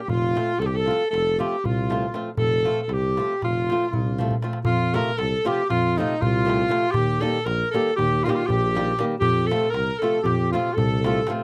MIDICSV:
0, 0, Header, 1, 6, 480
1, 0, Start_track
1, 0, Tempo, 508475
1, 60, Time_signature, 9, 3, 24, 8
1, 10794, End_track
2, 0, Start_track
2, 0, Title_t, "Accordion"
2, 0, Program_c, 0, 21
2, 31, Note_on_c, 0, 67, 56
2, 76, Note_off_c, 0, 67, 0
2, 104, Note_on_c, 0, 65, 85
2, 577, Note_off_c, 0, 65, 0
2, 578, Note_on_c, 0, 69, 73
2, 639, Note_off_c, 0, 69, 0
2, 659, Note_on_c, 0, 67, 59
2, 716, Note_off_c, 0, 67, 0
2, 735, Note_on_c, 0, 69, 78
2, 1068, Note_off_c, 0, 69, 0
2, 1091, Note_on_c, 0, 69, 83
2, 1321, Note_off_c, 0, 69, 0
2, 1364, Note_on_c, 0, 67, 64
2, 1554, Note_off_c, 0, 67, 0
2, 1577, Note_on_c, 0, 65, 59
2, 2021, Note_off_c, 0, 65, 0
2, 2265, Note_on_c, 0, 69, 97
2, 2654, Note_off_c, 0, 69, 0
2, 2704, Note_on_c, 0, 69, 57
2, 2748, Note_off_c, 0, 69, 0
2, 2790, Note_on_c, 0, 67, 74
2, 3253, Note_off_c, 0, 67, 0
2, 3298, Note_on_c, 0, 65, 64
2, 3963, Note_off_c, 0, 65, 0
2, 4395, Note_on_c, 0, 65, 84
2, 4646, Note_off_c, 0, 65, 0
2, 4658, Note_on_c, 0, 70, 80
2, 4886, Note_on_c, 0, 69, 91
2, 4889, Note_off_c, 0, 70, 0
2, 5155, Note_off_c, 0, 69, 0
2, 5158, Note_on_c, 0, 67, 80
2, 5384, Note_off_c, 0, 67, 0
2, 5396, Note_on_c, 0, 65, 78
2, 5637, Note_off_c, 0, 65, 0
2, 5660, Note_on_c, 0, 63, 73
2, 5874, Note_on_c, 0, 65, 84
2, 5880, Note_off_c, 0, 63, 0
2, 6541, Note_on_c, 0, 67, 89
2, 6559, Note_off_c, 0, 65, 0
2, 6802, Note_on_c, 0, 69, 88
2, 6815, Note_off_c, 0, 67, 0
2, 7033, Note_on_c, 0, 70, 88
2, 7037, Note_off_c, 0, 69, 0
2, 7299, Note_on_c, 0, 69, 81
2, 7305, Note_off_c, 0, 70, 0
2, 7514, Note_off_c, 0, 69, 0
2, 7532, Note_on_c, 0, 67, 81
2, 7780, Note_off_c, 0, 67, 0
2, 7797, Note_on_c, 0, 65, 71
2, 7855, Note_off_c, 0, 65, 0
2, 7859, Note_on_c, 0, 67, 67
2, 7901, Note_on_c, 0, 65, 76
2, 7915, Note_off_c, 0, 67, 0
2, 8018, Note_on_c, 0, 67, 87
2, 8020, Note_off_c, 0, 65, 0
2, 8542, Note_off_c, 0, 67, 0
2, 8682, Note_on_c, 0, 67, 91
2, 8940, Note_on_c, 0, 69, 82
2, 8941, Note_off_c, 0, 67, 0
2, 9160, Note_on_c, 0, 70, 76
2, 9182, Note_off_c, 0, 69, 0
2, 9437, Note_on_c, 0, 69, 77
2, 9444, Note_off_c, 0, 70, 0
2, 9665, Note_on_c, 0, 67, 91
2, 9675, Note_off_c, 0, 69, 0
2, 9922, Note_off_c, 0, 67, 0
2, 9928, Note_on_c, 0, 65, 72
2, 10149, Note_off_c, 0, 65, 0
2, 10162, Note_on_c, 0, 69, 86
2, 10690, Note_off_c, 0, 69, 0
2, 10794, End_track
3, 0, Start_track
3, 0, Title_t, "Alto saxophone"
3, 0, Program_c, 1, 65
3, 0, Note_on_c, 1, 67, 62
3, 87, Note_on_c, 1, 65, 101
3, 101, Note_off_c, 1, 67, 0
3, 563, Note_on_c, 1, 69, 95
3, 577, Note_off_c, 1, 65, 0
3, 620, Note_on_c, 1, 67, 78
3, 634, Note_off_c, 1, 69, 0
3, 709, Note_on_c, 1, 69, 104
3, 724, Note_off_c, 1, 67, 0
3, 1038, Note_off_c, 1, 69, 0
3, 1044, Note_on_c, 1, 69, 99
3, 1295, Note_off_c, 1, 69, 0
3, 1318, Note_on_c, 1, 67, 76
3, 1560, Note_on_c, 1, 65, 74
3, 1574, Note_off_c, 1, 67, 0
3, 2013, Note_off_c, 1, 65, 0
3, 2242, Note_on_c, 1, 69, 102
3, 2659, Note_off_c, 1, 69, 0
3, 2659, Note_on_c, 1, 69, 82
3, 2767, Note_on_c, 1, 67, 88
3, 2781, Note_off_c, 1, 69, 0
3, 3242, Note_off_c, 1, 67, 0
3, 3249, Note_on_c, 1, 65, 86
3, 3939, Note_off_c, 1, 65, 0
3, 4390, Note_on_c, 1, 65, 106
3, 4672, Note_on_c, 1, 70, 111
3, 4686, Note_off_c, 1, 65, 0
3, 4891, Note_on_c, 1, 69, 96
3, 4905, Note_off_c, 1, 70, 0
3, 5164, Note_on_c, 1, 67, 84
3, 5178, Note_off_c, 1, 69, 0
3, 5371, Note_off_c, 1, 67, 0
3, 5376, Note_on_c, 1, 65, 99
3, 5636, Note_on_c, 1, 63, 89
3, 5650, Note_off_c, 1, 65, 0
3, 5863, Note_on_c, 1, 65, 103
3, 5877, Note_off_c, 1, 63, 0
3, 6530, Note_on_c, 1, 67, 109
3, 6544, Note_off_c, 1, 65, 0
3, 6803, Note_on_c, 1, 69, 96
3, 6817, Note_off_c, 1, 67, 0
3, 7034, Note_on_c, 1, 70, 92
3, 7048, Note_off_c, 1, 69, 0
3, 7275, Note_off_c, 1, 70, 0
3, 7280, Note_on_c, 1, 69, 82
3, 7504, Note_off_c, 1, 69, 0
3, 7515, Note_on_c, 1, 67, 107
3, 7781, Note_on_c, 1, 65, 86
3, 7795, Note_off_c, 1, 67, 0
3, 7849, Note_on_c, 1, 67, 74
3, 7863, Note_off_c, 1, 65, 0
3, 7885, Note_on_c, 1, 65, 94
3, 7899, Note_off_c, 1, 67, 0
3, 7996, Note_on_c, 1, 67, 110
3, 8010, Note_off_c, 1, 65, 0
3, 8531, Note_off_c, 1, 67, 0
3, 8679, Note_on_c, 1, 67, 125
3, 8934, Note_on_c, 1, 69, 105
3, 8948, Note_off_c, 1, 67, 0
3, 9159, Note_on_c, 1, 70, 106
3, 9173, Note_off_c, 1, 69, 0
3, 9428, Note_on_c, 1, 69, 88
3, 9442, Note_off_c, 1, 70, 0
3, 9652, Note_off_c, 1, 69, 0
3, 9658, Note_on_c, 1, 67, 86
3, 9918, Note_off_c, 1, 67, 0
3, 9927, Note_on_c, 1, 65, 82
3, 10140, Note_on_c, 1, 69, 99
3, 10155, Note_off_c, 1, 65, 0
3, 10679, Note_off_c, 1, 69, 0
3, 10794, End_track
4, 0, Start_track
4, 0, Title_t, "Nylon-string guitar"
4, 0, Program_c, 2, 24
4, 332, Note_on_c, 2, 53, 64
4, 347, Note_on_c, 2, 57, 56
4, 348, Note_on_c, 2, 60, 58
4, 351, Note_on_c, 2, 65, 65
4, 474, Note_off_c, 2, 53, 0
4, 481, Note_off_c, 2, 60, 0
4, 482, Note_off_c, 2, 57, 0
4, 483, Note_off_c, 2, 65, 0
4, 808, Note_on_c, 2, 53, 49
4, 813, Note_on_c, 2, 57, 46
4, 824, Note_on_c, 2, 60, 53
4, 825, Note_on_c, 2, 65, 64
4, 960, Note_off_c, 2, 53, 0
4, 961, Note_off_c, 2, 57, 0
4, 967, Note_off_c, 2, 60, 0
4, 967, Note_off_c, 2, 65, 0
4, 1309, Note_on_c, 2, 53, 62
4, 1313, Note_on_c, 2, 57, 55
4, 1320, Note_on_c, 2, 65, 76
4, 1326, Note_on_c, 2, 60, 59
4, 1457, Note_off_c, 2, 57, 0
4, 1458, Note_off_c, 2, 53, 0
4, 1462, Note_off_c, 2, 65, 0
4, 1465, Note_off_c, 2, 60, 0
4, 1791, Note_on_c, 2, 53, 64
4, 1794, Note_on_c, 2, 57, 57
4, 1806, Note_on_c, 2, 60, 54
4, 1812, Note_on_c, 2, 65, 69
4, 1932, Note_off_c, 2, 53, 0
4, 1933, Note_off_c, 2, 57, 0
4, 1940, Note_off_c, 2, 60, 0
4, 1943, Note_off_c, 2, 65, 0
4, 2019, Note_on_c, 2, 57, 60
4, 2023, Note_on_c, 2, 53, 55
4, 2026, Note_on_c, 2, 60, 54
4, 2033, Note_on_c, 2, 65, 66
4, 2157, Note_off_c, 2, 57, 0
4, 2159, Note_off_c, 2, 53, 0
4, 2159, Note_off_c, 2, 60, 0
4, 2164, Note_off_c, 2, 65, 0
4, 2496, Note_on_c, 2, 53, 62
4, 2507, Note_on_c, 2, 57, 61
4, 2511, Note_on_c, 2, 60, 52
4, 2521, Note_on_c, 2, 65, 67
4, 2643, Note_off_c, 2, 53, 0
4, 2649, Note_off_c, 2, 57, 0
4, 2649, Note_off_c, 2, 60, 0
4, 2656, Note_off_c, 2, 65, 0
4, 2998, Note_on_c, 2, 53, 56
4, 3002, Note_on_c, 2, 57, 49
4, 3008, Note_on_c, 2, 60, 50
4, 3015, Note_on_c, 2, 65, 60
4, 3140, Note_off_c, 2, 53, 0
4, 3142, Note_off_c, 2, 57, 0
4, 3146, Note_off_c, 2, 60, 0
4, 3148, Note_off_c, 2, 65, 0
4, 3490, Note_on_c, 2, 53, 66
4, 3502, Note_on_c, 2, 57, 54
4, 3508, Note_on_c, 2, 60, 49
4, 3511, Note_on_c, 2, 65, 72
4, 3633, Note_off_c, 2, 53, 0
4, 3639, Note_off_c, 2, 57, 0
4, 3642, Note_off_c, 2, 60, 0
4, 3642, Note_off_c, 2, 65, 0
4, 3950, Note_on_c, 2, 53, 74
4, 3967, Note_on_c, 2, 57, 62
4, 3968, Note_on_c, 2, 60, 59
4, 3971, Note_on_c, 2, 65, 72
4, 4096, Note_off_c, 2, 53, 0
4, 4105, Note_off_c, 2, 57, 0
4, 4105, Note_off_c, 2, 60, 0
4, 4106, Note_off_c, 2, 65, 0
4, 4177, Note_on_c, 2, 53, 61
4, 4186, Note_on_c, 2, 60, 55
4, 4188, Note_on_c, 2, 57, 60
4, 4191, Note_on_c, 2, 65, 69
4, 4320, Note_off_c, 2, 53, 0
4, 4322, Note_off_c, 2, 60, 0
4, 4325, Note_off_c, 2, 57, 0
4, 4325, Note_off_c, 2, 65, 0
4, 4660, Note_on_c, 2, 48, 76
4, 4665, Note_on_c, 2, 53, 60
4, 4669, Note_on_c, 2, 57, 64
4, 4675, Note_on_c, 2, 60, 63
4, 4679, Note_on_c, 2, 65, 71
4, 4808, Note_off_c, 2, 48, 0
4, 4809, Note_off_c, 2, 53, 0
4, 4812, Note_off_c, 2, 57, 0
4, 4814, Note_off_c, 2, 60, 0
4, 4817, Note_off_c, 2, 65, 0
4, 5140, Note_on_c, 2, 48, 63
4, 5144, Note_on_c, 2, 53, 64
4, 5151, Note_on_c, 2, 57, 55
4, 5152, Note_on_c, 2, 60, 64
4, 5153, Note_on_c, 2, 65, 76
4, 5292, Note_off_c, 2, 48, 0
4, 5294, Note_off_c, 2, 53, 0
4, 5298, Note_off_c, 2, 57, 0
4, 5298, Note_off_c, 2, 60, 0
4, 5298, Note_off_c, 2, 65, 0
4, 5641, Note_on_c, 2, 48, 63
4, 5648, Note_on_c, 2, 53, 66
4, 5655, Note_on_c, 2, 57, 60
4, 5659, Note_on_c, 2, 60, 56
4, 5665, Note_on_c, 2, 65, 74
4, 5787, Note_off_c, 2, 48, 0
4, 5792, Note_off_c, 2, 53, 0
4, 5793, Note_off_c, 2, 57, 0
4, 5797, Note_off_c, 2, 60, 0
4, 5798, Note_off_c, 2, 65, 0
4, 6089, Note_on_c, 2, 48, 66
4, 6095, Note_on_c, 2, 53, 55
4, 6105, Note_on_c, 2, 57, 64
4, 6107, Note_on_c, 2, 60, 65
4, 6117, Note_on_c, 2, 65, 73
4, 6243, Note_off_c, 2, 48, 0
4, 6247, Note_off_c, 2, 53, 0
4, 6251, Note_off_c, 2, 60, 0
4, 6252, Note_off_c, 2, 57, 0
4, 6258, Note_off_c, 2, 65, 0
4, 6308, Note_on_c, 2, 48, 61
4, 6318, Note_on_c, 2, 57, 58
4, 6320, Note_on_c, 2, 53, 63
4, 6322, Note_on_c, 2, 60, 61
4, 6330, Note_on_c, 2, 65, 76
4, 6463, Note_off_c, 2, 48, 0
4, 6467, Note_off_c, 2, 57, 0
4, 6468, Note_off_c, 2, 53, 0
4, 6469, Note_off_c, 2, 60, 0
4, 6473, Note_off_c, 2, 65, 0
4, 6801, Note_on_c, 2, 55, 64
4, 6805, Note_on_c, 2, 51, 78
4, 6814, Note_on_c, 2, 58, 66
4, 6817, Note_on_c, 2, 63, 60
4, 6821, Note_on_c, 2, 67, 80
4, 6954, Note_off_c, 2, 55, 0
4, 6956, Note_off_c, 2, 51, 0
4, 6961, Note_off_c, 2, 58, 0
4, 6962, Note_off_c, 2, 63, 0
4, 6964, Note_off_c, 2, 67, 0
4, 7302, Note_on_c, 2, 51, 63
4, 7309, Note_on_c, 2, 55, 57
4, 7309, Note_on_c, 2, 58, 58
4, 7313, Note_on_c, 2, 63, 51
4, 7318, Note_on_c, 2, 67, 66
4, 7450, Note_off_c, 2, 51, 0
4, 7451, Note_off_c, 2, 55, 0
4, 7453, Note_off_c, 2, 58, 0
4, 7454, Note_off_c, 2, 63, 0
4, 7457, Note_off_c, 2, 67, 0
4, 7799, Note_on_c, 2, 51, 74
4, 7801, Note_on_c, 2, 55, 61
4, 7810, Note_on_c, 2, 58, 68
4, 7818, Note_on_c, 2, 63, 68
4, 7825, Note_on_c, 2, 67, 81
4, 7943, Note_off_c, 2, 51, 0
4, 7943, Note_off_c, 2, 55, 0
4, 7948, Note_off_c, 2, 58, 0
4, 7953, Note_off_c, 2, 63, 0
4, 7954, Note_off_c, 2, 67, 0
4, 8261, Note_on_c, 2, 51, 69
4, 8266, Note_on_c, 2, 55, 60
4, 8271, Note_on_c, 2, 58, 62
4, 8277, Note_on_c, 2, 63, 60
4, 8277, Note_on_c, 2, 67, 77
4, 8405, Note_off_c, 2, 51, 0
4, 8407, Note_off_c, 2, 55, 0
4, 8411, Note_off_c, 2, 58, 0
4, 8411, Note_off_c, 2, 67, 0
4, 8412, Note_off_c, 2, 63, 0
4, 8483, Note_on_c, 2, 51, 75
4, 8488, Note_on_c, 2, 55, 58
4, 8493, Note_on_c, 2, 58, 62
4, 8495, Note_on_c, 2, 63, 60
4, 8500, Note_on_c, 2, 67, 79
4, 8626, Note_off_c, 2, 51, 0
4, 8629, Note_off_c, 2, 55, 0
4, 8630, Note_off_c, 2, 58, 0
4, 8632, Note_off_c, 2, 63, 0
4, 8634, Note_off_c, 2, 67, 0
4, 8970, Note_on_c, 2, 48, 65
4, 8977, Note_on_c, 2, 53, 66
4, 8981, Note_on_c, 2, 57, 68
4, 8984, Note_on_c, 2, 60, 67
4, 8985, Note_on_c, 2, 65, 75
4, 9114, Note_off_c, 2, 48, 0
4, 9119, Note_off_c, 2, 53, 0
4, 9119, Note_off_c, 2, 57, 0
4, 9119, Note_off_c, 2, 60, 0
4, 9122, Note_off_c, 2, 65, 0
4, 9459, Note_on_c, 2, 48, 62
4, 9462, Note_on_c, 2, 53, 50
4, 9465, Note_on_c, 2, 57, 58
4, 9474, Note_on_c, 2, 65, 73
4, 9478, Note_on_c, 2, 60, 58
4, 9604, Note_off_c, 2, 48, 0
4, 9604, Note_off_c, 2, 53, 0
4, 9606, Note_off_c, 2, 57, 0
4, 9611, Note_off_c, 2, 65, 0
4, 9613, Note_off_c, 2, 60, 0
4, 9938, Note_on_c, 2, 48, 71
4, 9949, Note_on_c, 2, 53, 61
4, 9953, Note_on_c, 2, 57, 62
4, 9954, Note_on_c, 2, 60, 56
4, 9959, Note_on_c, 2, 65, 74
4, 10088, Note_off_c, 2, 48, 0
4, 10093, Note_off_c, 2, 53, 0
4, 10094, Note_off_c, 2, 57, 0
4, 10096, Note_off_c, 2, 60, 0
4, 10097, Note_off_c, 2, 65, 0
4, 10423, Note_on_c, 2, 48, 64
4, 10432, Note_on_c, 2, 53, 59
4, 10437, Note_on_c, 2, 57, 65
4, 10442, Note_on_c, 2, 60, 59
4, 10443, Note_on_c, 2, 65, 70
4, 10562, Note_off_c, 2, 48, 0
4, 10566, Note_off_c, 2, 53, 0
4, 10569, Note_off_c, 2, 57, 0
4, 10571, Note_off_c, 2, 65, 0
4, 10572, Note_off_c, 2, 60, 0
4, 10638, Note_on_c, 2, 48, 62
4, 10645, Note_on_c, 2, 53, 59
4, 10647, Note_on_c, 2, 57, 58
4, 10655, Note_on_c, 2, 60, 64
4, 10664, Note_on_c, 2, 65, 81
4, 10779, Note_off_c, 2, 48, 0
4, 10781, Note_off_c, 2, 53, 0
4, 10783, Note_off_c, 2, 57, 0
4, 10787, Note_off_c, 2, 60, 0
4, 10792, Note_off_c, 2, 65, 0
4, 10794, End_track
5, 0, Start_track
5, 0, Title_t, "Tuba"
5, 0, Program_c, 3, 58
5, 59, Note_on_c, 3, 29, 85
5, 356, Note_off_c, 3, 29, 0
5, 556, Note_on_c, 3, 36, 96
5, 853, Note_off_c, 3, 36, 0
5, 1055, Note_on_c, 3, 29, 89
5, 1350, Note_off_c, 3, 29, 0
5, 1545, Note_on_c, 3, 36, 85
5, 1960, Note_off_c, 3, 36, 0
5, 2233, Note_on_c, 3, 29, 84
5, 2530, Note_off_c, 3, 29, 0
5, 2722, Note_on_c, 3, 36, 89
5, 3020, Note_off_c, 3, 36, 0
5, 3229, Note_on_c, 3, 29, 70
5, 3523, Note_off_c, 3, 29, 0
5, 3703, Note_on_c, 3, 36, 77
5, 4120, Note_off_c, 3, 36, 0
5, 4398, Note_on_c, 3, 41, 81
5, 4695, Note_off_c, 3, 41, 0
5, 4888, Note_on_c, 3, 36, 83
5, 5049, Note_off_c, 3, 36, 0
5, 5381, Note_on_c, 3, 41, 90
5, 5676, Note_off_c, 3, 41, 0
5, 5860, Note_on_c, 3, 36, 101
5, 6275, Note_off_c, 3, 36, 0
5, 6548, Note_on_c, 3, 39, 78
5, 6845, Note_off_c, 3, 39, 0
5, 7038, Note_on_c, 3, 34, 90
5, 7200, Note_off_c, 3, 34, 0
5, 7528, Note_on_c, 3, 39, 97
5, 7825, Note_off_c, 3, 39, 0
5, 8010, Note_on_c, 3, 34, 102
5, 8425, Note_off_c, 3, 34, 0
5, 8691, Note_on_c, 3, 41, 94
5, 8991, Note_off_c, 3, 41, 0
5, 9187, Note_on_c, 3, 36, 83
5, 9349, Note_off_c, 3, 36, 0
5, 9664, Note_on_c, 3, 41, 94
5, 9965, Note_off_c, 3, 41, 0
5, 10166, Note_on_c, 3, 36, 112
5, 10580, Note_off_c, 3, 36, 0
5, 10794, End_track
6, 0, Start_track
6, 0, Title_t, "Darbuka"
6, 89, Note_on_c, 9, 64, 79
6, 183, Note_off_c, 9, 64, 0
6, 224, Note_on_c, 9, 63, 28
6, 319, Note_off_c, 9, 63, 0
6, 347, Note_on_c, 9, 63, 79
6, 441, Note_off_c, 9, 63, 0
6, 471, Note_on_c, 9, 63, 26
6, 565, Note_off_c, 9, 63, 0
6, 585, Note_on_c, 9, 63, 74
6, 679, Note_off_c, 9, 63, 0
6, 726, Note_on_c, 9, 63, 27
6, 821, Note_off_c, 9, 63, 0
6, 858, Note_on_c, 9, 63, 63
6, 952, Note_off_c, 9, 63, 0
6, 1075, Note_on_c, 9, 63, 68
6, 1169, Note_off_c, 9, 63, 0
6, 1195, Note_on_c, 9, 63, 22
6, 1290, Note_off_c, 9, 63, 0
6, 1328, Note_on_c, 9, 63, 60
6, 1422, Note_off_c, 9, 63, 0
6, 1561, Note_on_c, 9, 64, 70
6, 1655, Note_off_c, 9, 64, 0
6, 1799, Note_on_c, 9, 63, 67
6, 1894, Note_off_c, 9, 63, 0
6, 1913, Note_on_c, 9, 63, 23
6, 2008, Note_off_c, 9, 63, 0
6, 2021, Note_on_c, 9, 63, 62
6, 2116, Note_off_c, 9, 63, 0
6, 2136, Note_on_c, 9, 63, 24
6, 2231, Note_off_c, 9, 63, 0
6, 2241, Note_on_c, 9, 64, 87
6, 2336, Note_off_c, 9, 64, 0
6, 2373, Note_on_c, 9, 63, 25
6, 2467, Note_off_c, 9, 63, 0
6, 2507, Note_on_c, 9, 63, 57
6, 2601, Note_off_c, 9, 63, 0
6, 2628, Note_on_c, 9, 63, 25
6, 2722, Note_off_c, 9, 63, 0
6, 2729, Note_on_c, 9, 63, 66
6, 2824, Note_off_c, 9, 63, 0
6, 2867, Note_on_c, 9, 63, 24
6, 2962, Note_off_c, 9, 63, 0
6, 2995, Note_on_c, 9, 63, 64
6, 3090, Note_off_c, 9, 63, 0
6, 3115, Note_on_c, 9, 63, 28
6, 3209, Note_off_c, 9, 63, 0
6, 3231, Note_on_c, 9, 63, 57
6, 3231, Note_on_c, 9, 64, 57
6, 3325, Note_off_c, 9, 63, 0
6, 3325, Note_off_c, 9, 64, 0
6, 3359, Note_on_c, 9, 63, 23
6, 3454, Note_off_c, 9, 63, 0
6, 3491, Note_on_c, 9, 63, 59
6, 3585, Note_off_c, 9, 63, 0
6, 3606, Note_on_c, 9, 63, 26
6, 3700, Note_off_c, 9, 63, 0
6, 3713, Note_on_c, 9, 64, 77
6, 3807, Note_off_c, 9, 64, 0
6, 3844, Note_on_c, 9, 64, 48
6, 3938, Note_off_c, 9, 64, 0
6, 3961, Note_on_c, 9, 64, 65
6, 4055, Note_off_c, 9, 64, 0
6, 4067, Note_on_c, 9, 64, 59
6, 4161, Note_off_c, 9, 64, 0
6, 4176, Note_on_c, 9, 63, 62
6, 4271, Note_off_c, 9, 63, 0
6, 4278, Note_on_c, 9, 63, 65
6, 4372, Note_off_c, 9, 63, 0
6, 4386, Note_on_c, 9, 64, 105
6, 4481, Note_off_c, 9, 64, 0
6, 4526, Note_on_c, 9, 63, 30
6, 4620, Note_off_c, 9, 63, 0
6, 4666, Note_on_c, 9, 63, 83
6, 4761, Note_off_c, 9, 63, 0
6, 4896, Note_on_c, 9, 63, 80
6, 4990, Note_off_c, 9, 63, 0
6, 5167, Note_on_c, 9, 63, 75
6, 5261, Note_off_c, 9, 63, 0
6, 5384, Note_on_c, 9, 63, 77
6, 5384, Note_on_c, 9, 64, 69
6, 5478, Note_off_c, 9, 63, 0
6, 5478, Note_off_c, 9, 64, 0
6, 5643, Note_on_c, 9, 63, 71
6, 5737, Note_off_c, 9, 63, 0
6, 5874, Note_on_c, 9, 64, 89
6, 5968, Note_off_c, 9, 64, 0
6, 6131, Note_on_c, 9, 63, 79
6, 6226, Note_off_c, 9, 63, 0
6, 6233, Note_on_c, 9, 63, 29
6, 6328, Note_off_c, 9, 63, 0
6, 6339, Note_on_c, 9, 63, 79
6, 6433, Note_off_c, 9, 63, 0
6, 6457, Note_on_c, 9, 63, 29
6, 6552, Note_off_c, 9, 63, 0
6, 6552, Note_on_c, 9, 64, 94
6, 6646, Note_off_c, 9, 64, 0
6, 6700, Note_on_c, 9, 63, 30
6, 6795, Note_off_c, 9, 63, 0
6, 6943, Note_on_c, 9, 63, 30
6, 7037, Note_off_c, 9, 63, 0
6, 7048, Note_on_c, 9, 63, 78
6, 7142, Note_off_c, 9, 63, 0
6, 7311, Note_on_c, 9, 63, 70
6, 7405, Note_off_c, 9, 63, 0
6, 7541, Note_on_c, 9, 63, 67
6, 7541, Note_on_c, 9, 64, 67
6, 7636, Note_off_c, 9, 63, 0
6, 7636, Note_off_c, 9, 64, 0
6, 7795, Note_on_c, 9, 63, 68
6, 7889, Note_off_c, 9, 63, 0
6, 8023, Note_on_c, 9, 64, 88
6, 8117, Note_off_c, 9, 64, 0
6, 8274, Note_on_c, 9, 63, 75
6, 8369, Note_off_c, 9, 63, 0
6, 8376, Note_on_c, 9, 63, 31
6, 8470, Note_off_c, 9, 63, 0
6, 8484, Note_on_c, 9, 63, 79
6, 8578, Note_off_c, 9, 63, 0
6, 8607, Note_on_c, 9, 63, 34
6, 8701, Note_off_c, 9, 63, 0
6, 8702, Note_on_c, 9, 64, 91
6, 8796, Note_off_c, 9, 64, 0
6, 8851, Note_on_c, 9, 63, 28
6, 8946, Note_off_c, 9, 63, 0
6, 8981, Note_on_c, 9, 63, 81
6, 9075, Note_off_c, 9, 63, 0
6, 9088, Note_on_c, 9, 63, 30
6, 9182, Note_off_c, 9, 63, 0
6, 9197, Note_on_c, 9, 63, 84
6, 9292, Note_off_c, 9, 63, 0
6, 9458, Note_on_c, 9, 63, 71
6, 9553, Note_off_c, 9, 63, 0
6, 9682, Note_on_c, 9, 63, 75
6, 9682, Note_on_c, 9, 64, 73
6, 9776, Note_off_c, 9, 63, 0
6, 9776, Note_off_c, 9, 64, 0
6, 9947, Note_on_c, 9, 63, 67
6, 10041, Note_off_c, 9, 63, 0
6, 10174, Note_on_c, 9, 64, 94
6, 10268, Note_off_c, 9, 64, 0
6, 10426, Note_on_c, 9, 63, 90
6, 10520, Note_off_c, 9, 63, 0
6, 10542, Note_on_c, 9, 63, 30
6, 10636, Note_off_c, 9, 63, 0
6, 10636, Note_on_c, 9, 63, 83
6, 10730, Note_off_c, 9, 63, 0
6, 10753, Note_on_c, 9, 63, 32
6, 10794, Note_off_c, 9, 63, 0
6, 10794, End_track
0, 0, End_of_file